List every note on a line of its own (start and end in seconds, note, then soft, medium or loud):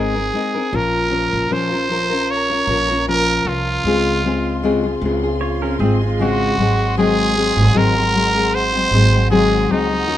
0.00 0.29 G#1 medium
0.00 0.15 G#3 medium
0.00 0.16 C4 medium
0.00 0.15 D#4 loud
0.00 0.77 G#4 loud
0.00 0.13 A#4 medium
0.14 0.33 C4 soft
0.14 0.34 D#4 medium
0.14 0.33 A#4 medium
0.33 0.55 G#3 medium
0.33 0.55 C4 medium
0.33 0.55 D#4 medium
0.33 0.53 A#4 medium
0.54 0.73 C4 soft
0.54 0.73 D#4 soft
0.54 0.72 A#4 medium
0.72 1.29 A#1 loud
0.72 1.11 A#2 medium
0.72 1.09 F3 medium
0.72 1.10 C#4 medium
0.72 1.12 F4 medium
0.72 3.82 A#4 medium
0.72 1.12 A#4 medium
0.72 1.54 A#4 loud
0.72 6.54 F5 medium
0.72 3.82 A#5 medium
1.10 1.49 F3 medium
1.10 1.50 C#4 medium
1.10 1.50 F4 medium
1.10 1.51 A#4 medium
1.33 1.49 A#1 loud
1.50 2.64 A#1 medium
1.50 1.72 A#2 medium
1.50 1.72 F3 medium
1.50 1.72 C#4 medium
1.50 1.71 F4 medium
1.50 1.69 A#4 medium
1.50 2.32 C5 loud
1.70 1.89 C#4 soft
1.70 1.90 F4 medium
1.70 1.89 A#4 medium
1.89 2.11 F3 medium
1.89 2.11 C#4 medium
1.89 2.11 F4 medium
1.89 2.09 A#4 medium
2.10 2.51 C#4 soft
2.10 2.51 F4 medium
2.10 2.49 A#4 medium
2.31 3.08 C#5 loud
2.50 2.68 C#4 soft
2.50 2.69 F4 soft
2.50 2.68 A#4 medium
2.67 3.42 A#1 loud
2.67 2.89 F3 medium
2.67 2.90 C#4 medium
2.67 2.90 F4 medium
2.67 2.88 A#4 medium
2.89 3.07 C#4 soft
2.89 3.08 F4 soft
2.89 3.07 A#4 medium
3.07 3.46 A#2 medium
3.07 3.44 F3 medium
3.07 3.46 C#4 medium
3.07 3.47 F4 medium
3.07 3.49 A#4 loud
3.07 3.47 A#4 medium
3.45 3.81 C2 medium
3.45 3.85 F3 medium
3.45 3.85 C#4 medium
3.45 5.03 F4 loud
3.45 3.86 F4 medium
3.49 3.86 A#4 medium
3.83 4.97 C#2 loud
3.83 4.24 C#3 medium
3.83 4.23 G#3 medium
3.83 4.24 C4 medium
3.83 10.04 G#4 medium
3.83 10.03 C6 medium
3.87 4.25 F4 medium
3.87 4.25 G#4 medium
4.24 4.62 G#3 medium
4.24 4.63 C4 medium
4.24 4.64 F4 medium
4.24 4.64 G#4 medium
4.63 4.84 C#3 medium
4.63 4.85 G#3 loud
4.63 4.85 C4 medium
4.63 4.84 F4 loud
4.63 4.82 G#4 medium
4.83 5.02 C4 medium
4.83 5.02 F4 medium
4.83 5.01 G#4 medium
5.01 5.76 C#2 loud
5.01 5.23 G#3 medium
5.01 5.24 C4 medium
5.01 5.24 F4 medium
5.01 5.22 G#4 medium
5.24 5.64 C4 medium
5.24 5.63 F4 medium
5.24 5.62 G#4 medium
5.41 5.62 F4 medium
5.41 5.61 C#5 medium
5.62 5.79 C#4 medium
5.62 5.81 F4 medium
5.62 5.80 G#4 soft
5.62 5.79 A#4 medium
5.67 5.81 C4 soft
5.79 6.53 G#1 loud
5.79 6.01 G#3 medium
5.79 6.00 C4 medium
5.79 6.02 C4 medium
5.79 6.03 F4 medium
5.79 6.00 G#4 medium
5.84 6.01 G#4 medium
6.01 6.55 G#3 medium
6.01 6.55 F4 medium
6.01 6.20 F4 soft
6.01 6.19 G#4 medium
6.06 6.20 C4 soft
6.19 6.58 C#3 medium
6.19 6.58 G#3 medium
6.19 6.59 C4 medium
6.19 6.94 F#4 loud
6.19 6.59 G#4 medium
6.58 7.53 G#1 medium
6.58 6.97 F#3 medium
6.58 6.96 G#3 medium
6.58 6.97 C4 medium
6.58 10.05 D#5 medium
6.58 10.18 F#5 medium
6.62 6.98 G#4 medium
6.96 7.35 G#2 medium
6.96 7.36 D#3 medium
6.96 7.34 F#3 medium
6.96 7.36 G#3 loud
6.96 7.36 C4 medium
6.96 7.78 G#4 loud
6.96 7.37 G#4 medium
7.35 7.73 F#3 medium
7.35 7.73 G#3 medium
7.35 7.74 C4 medium
7.35 7.74 G#4 medium
7.57 7.73 G#1 loud
7.73 8.87 G#1 medium
7.73 7.95 G#2 medium
7.73 7.96 D#3 medium
7.73 7.96 F#3 medium
7.73 7.96 G#3 medium
7.73 7.96 C4 medium
7.73 7.94 G#4 loud
7.73 8.56 A#4 loud
7.95 8.12 F#3 soft
7.95 8.13 G#3 soft
7.95 8.14 C4 medium
7.95 8.13 G#4 medium
8.13 8.35 F#3 medium
8.13 8.35 G#3 medium
8.13 8.35 C4 medium
8.13 8.34 G#4 medium
8.35 8.75 F#3 soft
8.35 8.74 G#3 medium
8.35 8.73 C4 medium
8.35 8.71 G#4 medium
8.55 9.29 C5 loud
8.73 8.90 F#3 soft
8.73 8.92 G#3 soft
8.73 8.92 C4 medium
8.73 8.91 G#4 medium
8.91 9.65 G#1 loud
8.91 9.13 F#3 medium
8.91 9.13 G#3 medium
8.91 9.13 C4 medium
8.91 9.11 G#4 medium
9.12 9.30 F#3 soft
9.12 9.30 G#3 soft
9.12 9.31 C4 soft
9.12 9.30 G#4 soft
9.30 9.69 G#2 medium
9.30 9.69 D#3 medium
9.30 9.68 F#3 medium
9.30 9.69 G#3 medium
9.30 9.70 C4 medium
9.30 9.73 G#4 loud
9.30 9.70 G#4 medium
9.69 10.08 C#2 medium
9.69 9.91 F#3 medium
9.69 9.91 G#3 medium
9.69 9.90 C4 medium
9.69 10.18 D#4 loud
9.69 9.89 G#4 medium
9.90 10.06 F#3 soft
9.90 10.07 G#3 soft
9.90 10.08 G#4 soft
10.07 10.18 D#2 loud
10.07 10.18 D#3 medium
10.07 10.18 A#3 medium
10.07 10.18 C#4 medium
10.07 10.18 F#4 medium
10.07 10.18 A#4 medium
10.07 10.18 D#5 medium
10.07 10.18 C#6 medium